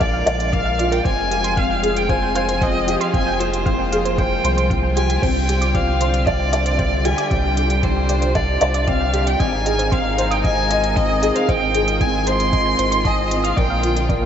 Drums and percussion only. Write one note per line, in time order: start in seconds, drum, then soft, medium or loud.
0.01 kick medium
0.01 closed hi-hat soft
0.27 closed hi-hat medium
0.40 closed hi-hat soft
0.53 kick loud
0.53 closed hi-hat soft
0.79 closed hi-hat medium
0.92 closed hi-hat soft
1.05 kick loud
1.05 closed hi-hat soft
1.31 closed hi-hat medium
1.44 closed hi-hat soft
1.57 kick loud
1.57 closed hi-hat soft
1.84 closed hi-hat medium
1.96 closed hi-hat soft
2.09 kick medium
2.09 closed hi-hat soft
2.35 closed hi-hat medium
2.49 closed hi-hat soft
2.62 kick loud
2.62 closed hi-hat soft
2.88 closed hi-hat medium
3.01 closed hi-hat soft
3.14 kick loud
3.14 closed hi-hat soft
3.40 closed hi-hat medium
3.54 closed hi-hat soft
3.66 kick loud
3.66 closed hi-hat soft
3.93 closed hi-hat medium
4.05 closed hi-hat soft
4.18 kick loud
4.18 closed hi-hat soft
4.45 closed hi-hat medium
4.58 closed hi-hat soft
4.70 kick loud
4.70 closed hi-hat soft
4.97 closed hi-hat medium
5.10 closed hi-hat soft
5.23 kick loud
5.23 closed hi-hat soft
5.23 crash medium
5.49 closed hi-hat medium
5.62 closed hi-hat soft
5.75 kick loud
5.75 closed hi-hat soft
6.01 closed hi-hat medium
6.14 closed hi-hat soft
6.27 kick loud
6.27 closed hi-hat soft
6.53 closed hi-hat medium
6.66 closed hi-hat soft
6.79 kick loud
6.79 closed hi-hat soft
7.05 closed hi-hat medium
7.18 closed hi-hat soft
7.31 kick loud
7.31 closed hi-hat soft
7.57 closed hi-hat medium
7.70 closed hi-hat soft
7.83 kick loud
7.83 closed hi-hat soft
8.09 closed hi-hat medium
8.22 closed hi-hat soft
8.35 kick loud
8.35 closed hi-hat soft
8.61 closed hi-hat medium
8.74 closed hi-hat soft
8.88 kick loud
8.88 closed hi-hat soft
9.14 closed hi-hat medium
9.27 closed hi-hat soft
9.40 kick loud
9.40 closed hi-hat soft
9.66 closed hi-hat medium
9.79 closed hi-hat soft
9.92 kick loud
9.92 closed hi-hat soft
10.18 closed hi-hat medium
10.31 closed hi-hat soft
10.44 kick loud
10.44 closed hi-hat soft
10.71 closed hi-hat medium
10.84 closed hi-hat soft
10.96 kick loud
10.96 closed hi-hat soft
11.23 closed hi-hat medium
11.36 closed hi-hat soft
11.49 kick loud
11.49 closed hi-hat soft
11.75 closed hi-hat medium
11.88 closed hi-hat soft
12.01 kick loud
12.01 closed hi-hat soft
12.27 closed hi-hat medium
12.40 closed hi-hat soft
12.53 kick loud
12.53 closed hi-hat soft
12.79 closed hi-hat medium
12.92 closed hi-hat soft
13.05 kick loud
13.05 closed hi-hat soft
13.31 closed hi-hat medium
13.45 closed hi-hat soft
13.57 kick loud
13.57 closed hi-hat soft
13.83 closed hi-hat medium
13.97 closed hi-hat soft
14.09 kick loud
14.09 closed hi-hat soft